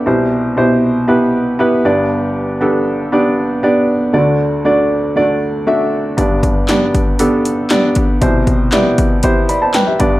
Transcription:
<<
  \new Staff \with { instrumentName = "Upright piano" } { \time 4/4 \key g \major \tempo 4 = 118 << { r1 | r1 | r1 | r1 |
r2 r8 <d'' b''>16 <c'' a''>16 <b' g''>16 <g' e''>8 r16 | } \\ { <b, e' g' c''>4 <b, e' g' c''>4 <b e' g' b'>4 <b e' g' b'>8 <b d' g' d''>8~ | <b d' g' d''>4 <b d' g' a'>4 <b d' g' d''>4 <b d' g' d''>4 | <a d' fis' d''>4 <a d' fis' d''>4 <a d' fis' d''>4 <a d' fis' e''>4 | <b d' g' d''>4 <b d' g' d''>4 <b d' g' a'>4 <b d' g' d''>4 |
<b, e' g' c''>4 <b e' g' d''>4 <b e' g' c''>4 r8 <b d' g' d''>8 | } >> }
  \new Staff \with { instrumentName = "Upright piano" } { \clef bass \time 4/4 \key g \major <c, c>2.~ <c, c>8 <g,, g,>8~ | <g,, g,>2.~ <g,, g,>8 r8 | <d, d>1 | <g,, g,>1 |
<c, c>2.~ <c, c>8 <g,, g,>8 | }
  \new DrumStaff \with { instrumentName = "Drums" } \drummode { \time 4/4 r4 r4 r4 r4 | r4 r4 r4 r4 | r4 r4 r4 r4 | <hh bd>8 <hh bd>8 <hc hh sn>8 <hh bd>8 hh8 hh8 <hc hh sn>8 <hh bd>8 |
<hh bd>8 <hh bd>8 <hc hh sn>8 <hh bd>8 <hh bd>8 hh8 <hc hh sn>8 <hh bd>8 | }
>>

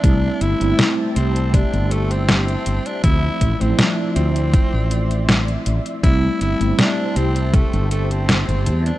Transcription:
<<
  \new Staff \with { instrumentName = "String machine" } { \time 4/4 \key a \phrygian \tempo 4 = 80 << { <g' c'' a''>1 | <f d'' c'''>1 | <g' c'' a''>1 | } \\ { e''1~ | e''1~ | e''1 | } >> }
  \new Staff \with { instrumentName = "Tenor saxophone" } { \time 4/4 \key a \phrygian d'8 e'8. r16 c'8 d'8 a16 c'4 d'16 | e'8. c'16 d'8 c'2 r8 | e'8 e'8 d'8 c'8 a8 a16 c'4 d'16 | }
  \new Staff \with { instrumentName = "Tine electric piano" } { \time 4/4 \key a \phrygian <g a c' e'>8. <g a c' e'>2.~ <g a c' e'>16 | <f a c' e'>8. <f a c' e'>2.~ <f a c' e'>16 | <g a c' e'>8. <g a c' e'>2.~ <g a c' e'>16 | }
  \new Staff \with { instrumentName = "Fretless electric bass" } { \clef bass \time 4/4 \key a \phrygian c,16 r16 g,,16 g,,16 r8 c,8 r16 g,,4 r16 g,,16 r16 | d,16 r16 a,,16 a,,16 r8 d,8 r16 a,,4 r16 a,,16 r16 | c,16 r16 g,,16 g,,16 r8 c,8 r16 g,,4 g,,16 e,16 r16 | }
  \new DrumStaff \with { instrumentName = "Drums" } \drummode { \time 4/4 <hh bd>8 hh16 hh16 <hh sn>8 hh16 hh16 <hh bd>16 hh16 hh16 hh16 <hh sn>16 hh16 hh16 hh16 | <hh bd>8 <hh bd>16 hh16 <hh sn>8 hh16 hh16 <hh bd>8 hh16 hh16 <hh sn>16 hh16 hh16 hh16 | <hh bd>8 hh16 hh16 <hh sn>8 hh16 hh16 <hh bd>16 hh16 hh16 hh16 <hh sn>16 hh16 hh16 hh16 | }
>>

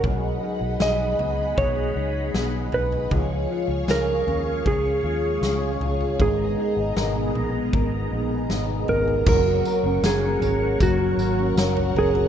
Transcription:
<<
  \new Staff \with { instrumentName = "String machine" } { \time 4/4 \key fis \major \tempo 4 = 78 << { <dis'' fis'' b''>1 | <cis'' eis'' cis'''>1 | <b dis'' ais''>1 | <cis'' fis'' cis'''>1 | } \\ { gis'1 | gis'1~ | gis'1 | ais'1 | } >> }
  \new Staff \with { instrumentName = "Electric slide guitar" } { \time 4/4 \key fis \major r4 dis''4 cis''4 r8 b'8 | r4 ais'4 gis'2 | gis'2. r8 ais'8 | ais'4 gis'4 fis'4. gis'8 | }
  \new Staff \with { instrumentName = "Clean electric guitar" } { \time 4/4 \key fis \major <fis gis'>8 dis'8 gis'8 b8 gis'8 dis'8 b8 dis'8 | <eis gis'>8 eis'8 gis'8 cis'8 gis'8 eis'8 cis'8 eis'8 | <gis ais'>8 dis'8 ais'8 b8 ais'8 dis'8 b8 dis'8 | <fis ais'>16 fis'16 ais'16 cis'16 ais'16 cis'16 ais'16 fis'16 <fis ais'>16 fis'16 ais'16 cis'16 ais'16 cis'16 ais'16 fis'16 | }
  \new Staff \with { instrumentName = "Fingered electric bass" } { \clef bass \time 4/4 \key fis \major b,,8 r16 b,,16 b,,8 cis,8 b,,8 cis,8 b,,8 b,,8 | cis,8 r16 cis,16 cis,8 dis,8 cis,8 dis,8 cis,8 cis,8 | gis,,8 r16 gis,,16 gis,,8 ais,,8 gis,,8 ais,,8 gis,,8 gis,,8 | fis,,8 r16 fis,,16 fis,,8 gis,,8 fis,,8 gis,,8 fis,,8 fis,,8 | }
  \new DrumStaff \with { instrumentName = "Drums" } \drummode { \time 4/4 <bd tomfh>4 sn8 tomfh8 <bd tomfh>4 sn8 tomfh16 tomfh16 | <bd tomfh>4 sn8 tomfh8 <bd tomfh>4 sn8 tomfh16 tomfh16 | <bd tomfh>4 sn8 tomfh8 <bd tomfh>4 sn8 tomfh16 tomfh16 | <cymc bd tamb tomfh>8 tamb8 <sn tamb>8 <tamb tomfh>8 <bd tamb tomfh>8 tamb8 <sn tamb>16 tomfh16 tomfh16 tomfh16 | }
>>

